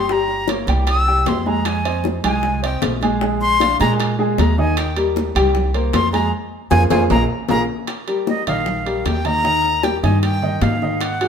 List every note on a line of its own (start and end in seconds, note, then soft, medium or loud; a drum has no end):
0.00 0.62 G1 medium
0.00 0.14 C6 loud
0.09 0.42 G3 medium
0.09 0.42 G4 medium
0.09 0.42 G5 medium
0.09 0.50 A#5 medium
0.09 high bongo medium
0.28 high bongo soft
0.28 high conga soft
0.48 0.64 A#3 medium
0.48 0.65 A#4 medium
0.48 0.65 C#5 medium
0.48 high bongo medium
0.48 high conga medium
0.48 high timbale medium
0.48 low timbale medium
0.67 1.22 C2 loud
0.67 1.00 G3 loud
0.67 1.00 G4 loud
0.67 1.01 G5 loud
0.67 high bongo soft
0.67 high conga medium
0.67 high timbale medium
0.87 1.29 E6 loud
0.87 high bongo medium
0.87 high conga soft
0.87 high timbale medium
1.07 1.39 G3 medium
1.07 1.39 G4 medium
1.07 1.39 G5 medium
1.07 high conga soft
1.26 2.18 F2 medium
1.26 1.49 C6 medium
1.26 high bongo medium
1.26 low bongo medium
1.26 high conga medium
1.26 high timbale medium
1.26 low timbale medium
1.46 1.78 G#3 medium
1.46 1.78 G#4 medium
1.46 1.78 G#5 medium
1.46 1.68 A#5 medium
1.46 high bongo soft
1.46 high conga medium
1.65 2.05 G#5 medium
1.65 high bongo medium
1.65 high timbale medium
1.85 2.17 C4 medium
1.85 2.17 C5 medium
1.85 2.17 D#5 medium
1.85 high bongo soft
1.85 high conga soft
1.85 high timbale medium
2.04 high bongo medium
2.04 high conga medium
2.04 low timbale medium
2.24 2.78 C2 medium
2.24 2.56 G#3 medium
2.24 2.56 G#4 medium
2.24 2.56 G#5 medium
2.24 2.61 G#5 loud
2.24 high bongo soft
2.24 high conga soft
2.24 low conga medium
2.24 high timbale loud
2.43 high bongo medium
2.43 high conga soft
2.62 2.95 C4 medium
2.62 2.95 C5 medium
2.62 2.95 D#5 medium
2.62 2.82 G5 loud
2.62 high conga soft
2.62 high timbale medium
2.82 3.74 A#1 loud
2.82 high bongo medium
2.82 low bongo medium
2.82 high conga medium
2.82 high timbale medium
2.82 low timbale medium
3.01 3.18 G#3 medium
3.01 3.18 G#4 medium
3.01 3.18 G#5 medium
3.01 high bongo soft
3.01 high conga medium
3.01 high timbale medium
3.21 3.53 G#3 medium
3.21 3.53 G#4 medium
3.21 3.54 G#5 medium
3.21 high bongo medium
3.40 3.77 C6 loud
3.40 high bongo soft
3.40 high conga soft
3.60 3.77 D4 medium
3.60 3.77 D5 medium
3.60 3.77 F5 medium
3.60 high bongo medium
3.60 high conga medium
3.60 high timbale medium
3.60 low timbale medium
3.80 4.35 A#2 loud
3.80 4.12 G#3 loud
3.80 4.12 G#4 medium
3.80 4.12 G#5 loud
3.80 3.92 A#5 loud
3.80 high bongo soft
3.80 high conga medium
3.80 high timbale medium
3.99 high bongo medium
3.99 high conga soft
3.99 high timbale loud
4.19 4.51 G#3 medium
4.19 4.51 G#4 medium
4.19 4.51 G#5 medium
4.19 high conga soft
4.38 5.30 D#2 loud
4.38 4.57 A#5 medium
4.38 high bongo medium
4.38 low bongo medium
4.38 high conga medium
4.38 high timbale medium
4.38 low timbale medium
4.58 4.90 D#3 medium
4.58 4.90 D#4 medium
4.58 4.90 D#5 medium
4.58 4.80 G#5 medium
4.58 high bongo soft
4.77 4.97 G5 medium
4.77 high bongo medium
4.77 high conga soft
4.77 high timbale medium
4.96 5.28 G3 medium
4.96 5.29 G4 medium
4.96 5.29 A#4 medium
4.96 high bongo soft
4.96 high conga soft
4.96 high timbale medium
5.16 high bongo medium
5.16 high conga loud
5.16 low timbale medium
5.35 5.90 C2 loud
5.35 5.67 G3 loud
5.35 5.68 G4 loud
5.35 5.68 G5 loud
5.35 high bongo soft
5.35 high conga soft
5.35 low conga medium
5.35 high timbale loud
5.55 high bongo medium
5.55 high conga soft
5.55 low conga medium
5.74 6.06 A#3 medium
5.74 6.06 A#4 medium
5.74 6.06 C5 medium
5.74 high conga soft
5.74 high timbale medium
5.93 6.30 F2 loud
5.93 6.12 C6 loud
5.93 high bongo medium
5.93 low bongo medium
5.93 high conga medium
5.93 high timbale loud
5.93 low timbale medium
6.13 6.29 G#3 medium
6.13 6.29 G#4 medium
6.13 6.29 G#5 medium
6.13 6.31 A#5 medium
6.13 high bongo soft
6.13 high conga medium
6.13 high timbale medium
6.71 6.86 F2 loud
6.71 6.84 F4 loud
6.71 6.84 G#4 loud
6.71 6.84 C5 loud
6.71 6.83 G#5 loud
6.71 low bongo loud
6.71 high conga medium
6.71 high timbale loud
6.90 7.05 F2 loud
6.90 7.04 F4 loud
6.90 7.04 G#4 loud
6.90 7.04 C5 loud
6.90 7.03 G#5 loud
6.90 low bongo loud
6.90 high conga medium
6.90 high timbale loud
7.10 7.25 A#1 loud
7.10 7.23 F4 loud
7.10 7.23 G#4 medium
7.10 7.23 A#4 loud
7.10 7.23 A#5 loud
7.10 low bongo loud
7.10 high conga loud
7.10 high timbale medium
7.48 7.64 A#1 loud
7.48 7.62 F4 loud
7.48 7.62 G#4 medium
7.48 7.62 A#4 medium
7.48 7.63 A#5 loud
7.48 low bongo loud
7.48 high conga medium
7.48 high timbale medium
7.87 high bongo medium
7.87 high conga soft
7.87 high timbale medium
8.07 8.40 G3 medium
8.07 8.40 G4 medium
8.07 8.40 A#4 medium
8.07 high bongo soft
8.07 high conga soft
8.07 high timbale medium
8.27 8.46 D#5 medium
8.27 high bongo medium
8.27 high conga medium
8.27 low timbale soft
8.47 9.02 A#1 medium
8.47 8.79 D#3 medium
8.47 8.79 D#4 medium
8.47 8.80 D#5 loud
8.47 9.07 F5 medium
8.47 high bongo soft
8.47 high conga soft
8.47 low conga medium
8.47 high timbale medium
8.66 high bongo medium
8.66 high conga soft
8.66 low conga medium
8.86 9.18 G3 medium
8.86 9.18 G4 medium
8.86 9.18 A#4 medium
8.86 high conga soft
8.86 high timbale medium
9.05 9.97 D#2 medium
9.05 9.27 G5 loud
9.05 high bongo medium
9.05 low bongo medium
9.05 high conga medium
9.05 high timbale medium
9.05 low timbale medium
9.25 9.41 D#3 medium
9.25 9.41 D#4 medium
9.25 9.41 D#5 medium
9.25 9.85 A#5 loud
9.25 high bongo soft
9.25 high conga medium
9.25 high timbale medium
9.44 9.76 D#3 medium
9.44 9.76 D#4 medium
9.44 9.77 D#5 medium
9.44 high bongo medium
9.44 high conga soft
9.64 high bongo soft
9.64 high conga soft
9.83 9.99 G3 medium
9.83 10.00 G4 medium
9.83 10.00 A#4 medium
9.83 10.03 G5 loud
9.83 high bongo medium
9.83 high conga medium
9.83 high timbale medium
9.83 low timbale medium
10.03 10.58 G2 loud
10.03 10.35 D#3 medium
10.03 10.36 D#4 medium
10.03 10.36 D#5 medium
10.03 10.21 G#5 loud
10.03 high bongo soft
10.03 high conga medium
10.03 high timbale medium
10.22 10.63 G5 loud
10.22 high bongo medium
10.22 high conga soft
10.22 high timbale medium
10.42 10.74 D#3 medium
10.42 10.75 D#4 medium
10.42 10.75 D#5 medium
10.42 high conga soft
10.62 11.28 G#2 medium
10.62 11.02 F5 medium
10.62 high bongo medium
10.62 low bongo medium
10.62 high conga medium
10.62 high timbale medium
10.62 low timbale medium
10.82 11.14 D#3 medium
10.82 11.14 D#4 medium
10.82 11.14 D#5 medium
10.82 high bongo soft
11.01 11.28 F#5 loud
11.01 high bongo medium
11.01 high conga soft
11.01 high timbale medium
11.21 11.28 F#3 medium
11.21 11.28 F#4 medium
11.21 11.28 G#4 medium
11.21 high bongo soft
11.21 high conga soft
11.21 high timbale medium